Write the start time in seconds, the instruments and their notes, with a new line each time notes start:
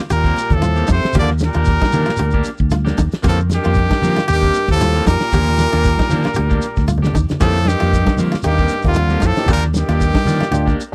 0.10 fingered electric bass D#2, baritone saxophone A#2, koto G4, trumpet A#4, closed hi-hat, high conga, shekere
0.16 tenor saxophone G3
0.24 clean electric guitar A#3 C4 G4, kick, shekere
0.36 snare, closed hi-hat, shekere
0.50 fingered electric bass D#2, trumpet A4, kick, closed hi-hat, low conga, shekere
0.55 baritone saxophone A2, tenor saxophone F3
0.62 koto F4, closed hi-hat, high conga, shekere
0.76 clean electric guitar A#3 C4 G4, shekere
0.87 fingered electric bass F2, baritone saxophone C3, koto D#4, kick, closed hi-hat, high conga, shekere
0.92 tenor saxophone A3, trumpet C5
1.01 muted fingered electric bass stroke, snare, closed hi-hat, shekere
1.13 fingered electric bass D#2, clean electric guitar F3 A#3 G4, koto G4, muted clean electric guitar stroke, kick, closed hi-hat, high conga, low conga, shekere
1.19 baritone saxophone D3, tenor saxophone A#3, trumpet D5
1.28 snare, shekere
1.39 snare, closed hi-hat, high conga, shekere
1.46 baritone saxophone A#2, tenor saxophone G3, trumpet A#4
1.53 fingered electric bass D#2, clean electric guitar A#3 D4 G4, koto F4, closed hi-hat, shekere
1.65 kick, closed hi-hat, shekere
1.69 snare
1.80 koto D#4, kick, snare, high conga, shekere
1.92 fingered electric bass D#3, clean electric guitar F3 A#3 D4 G4, open hi-hat, low conga, shekere
2.06 koto F4, muted fingered electric bass stroke, snare, closed hi-hat, shekere
2.17 fingered electric bass D2, koto G4, shekere
2.21 closed hi-hat, high conga
2.31 clean electric guitar A#3 D4 G4, kick, shekere
2.44 snare, closed hi-hat, shekere
2.58 fingered electric bass D2, kick, shekere
2.71 koto F4, snare, closed hi-hat, high conga, shekere
2.85 clean electric guitar A#3 D4 G4, snare, high conga, shekere
2.98 fingered electric bass D#2, koto D#4, kick, closed hi-hat, high conga, shekere
3.12 snare, closed hi-hat, shekere
3.22 fingered electric bass F2, clean electric guitar D#3 A#3 C4 G4, koto G4, kick, closed hi-hat, high conga, low conga, shekere
3.27 baritone saxophone A2, tenor saxophone F3, trumpet A4
3.39 shekere
3.50 baritone saxophone G2, snare, closed hi-hat, high conga, shekere
3.55 tenor saxophone D#3, trumpet G4
3.63 fingered electric bass F2, clean electric guitar A#3 C4 G4, koto F4, closed hi-hat, shekere
3.74 kick, closed hi-hat, high conga, shekere
3.89 koto D#4, kick, snare, high conga, shekere
4.02 clean electric guitar D#3 A#3 C4 G4, fingered electric bass F3, open hi-hat, high conga, low conga, shekere
4.16 koto F4, muted fingered electric bass stroke, snare, shekere
4.28 fingered electric bass D#2, koto G4, closed hi-hat, shekere
4.32 baritone saxophone G2, tenor saxophone D#3, trumpet G4
4.42 clean electric guitar A#3 C4 G4, kick, shekere
4.54 closed hi-hat, shekere
4.68 fingered electric bass D#2, tenor saxophone F3, trumpet A4, kick, snare, closed hi-hat, low conga, shekere
4.73 baritone saxophone A2
4.80 koto F4, closed hi-hat, high conga, shekere
4.94 clean electric guitar A#3 C4 G4, shekere
5.05 fingered electric bass F2, koto D#4, trumpet A#4, kick, closed hi-hat, high conga, shekere
5.09 baritone saxophone A#2, tenor saxophone G3
5.19 snare, closed hi-hat, shekere
5.32 fingered electric bass D#2, clean electric guitar F3 A#3 D4 G4, koto G4, kick, closed hi-hat, high conga, low conga, shekere
5.46 shekere
5.58 snare, closed hi-hat, high conga, shekere
5.72 fingered electric bass D#2, clean electric guitar A#3 D4 G4, koto F4, snare, closed hi-hat, shekere
5.84 kick, snare, closed hi-hat, high conga, shekere
5.97 koto D#4, kick, snare, high conga, shekere
6.09 fingered electric bass D#3, clean electric guitar F3 A#3 D4 G4, snare, open hi-hat, low conga, shekere
6.23 koto F4, muted fingered electric bass stroke, snare, closed hi-hat, shekere
6.34 fingered electric bass D2, koto G4, closed hi-hat, high conga, shekere
6.49 clean electric guitar A#3 D4 G4, kick, shekere
6.62 snare, closed hi-hat, shekere
6.76 fingered electric bass D2, kick, snare, shekere
6.88 koto F4, closed hi-hat, high conga, shekere
6.98 low conga
7.02 clean electric guitar D4 G4, muted clean electric guitar stroke, snare, shekere
7.07 low conga
7.14 fingered electric bass D#2, koto D#4, kick, closed hi-hat, low conga, shekere
7.29 snare, closed hi-hat, low conga, shekere
7.40 fingered electric bass F2, baritone saxophone A2, clean electric guitar D#3 A#3 C4 G4, tenor saxophone F3, koto G4, trumpet A4, kick, closed hi-hat, high conga, low conga, shekere
7.56 snare, shekere
7.65 baritone saxophone G2, tenor saxophone D#3, trumpet G4, snare, closed hi-hat, high conga, shekere
7.80 fingered electric bass F2, clean electric guitar A#3 C4 G4, koto F4, closed hi-hat, shekere
7.92 kick, closed hi-hat, high conga, shekere
8.05 koto D#4, kick, snare, high conga, shekere
8.17 clean electric guitar D#3 A#3 C4 G4, fingered electric bass F3, open hi-hat, high conga, low conga, shekere
8.32 koto F4, muted fingered electric bass stroke, snare, shekere
8.43 fingered electric bass D#2, tenor saxophone D#3, tine electric piano A#3 D#4 G4, koto G4, snare, closed hi-hat, shekere
8.47 baritone saxophone G2, trumpet G4
8.58 clean electric guitar A#3 C4 G4, kick, shekere
8.68 snare, closed hi-hat, shekere
8.82 fingered electric bass D#2, tine electric piano A#3 G4, kick, snare, closed hi-hat, shekere
8.86 baritone saxophone F2, tenor saxophone D3, tine electric piano D#4, trumpet F4
8.94 koto F4, closed hi-hat, high conga, shekere
9.09 clean electric guitar A#3 C4 G4, high conga, shekere
9.20 fingered electric bass F2, baritone saxophone A2, koto D#4, tine electric piano D#4 F4, kick, snare, closed hi-hat, high conga, shekere
9.25 tenor saxophone F3, trumpet A4
9.36 tine electric piano A#3 D#4 G4, muted fingered electric bass stroke, snare, closed hi-hat, shekere
9.46 fingered electric bass D#2, baritone saxophone A#2, clean electric guitar F3 A#3 D4 G4, koto G4, kick, closed hi-hat, high conga, low conga, shekere
9.52 tenor saxophone G3, trumpet A#4
9.63 snare, shekere
9.74 baritone saxophone G2, tenor saxophone D#3, trumpet G4, snare, closed hi-hat, high conga, shekere
9.88 fingered electric bass D#2, clean electric guitar A#3 D4 G4, koto F4, snare, closed hi-hat, shekere
10.01 kick, closed hi-hat, shekere
10.14 koto D#4, kick, snare, high conga, shekere
10.25 fingered electric bass D#3, clean electric guitar F3 A#3 D4 G4, open hi-hat, high conga, low conga, shekere
10.40 koto F4, muted fingered electric bass stroke, snare, closed hi-hat, shekere
10.51 fingered electric bass D2, tine electric piano D4 F4 G4, koto G4, closed hi-hat, high conga, shekere
10.66 clean electric guitar A#3 D4 G4, kick, shekere
10.80 closed hi-hat, shekere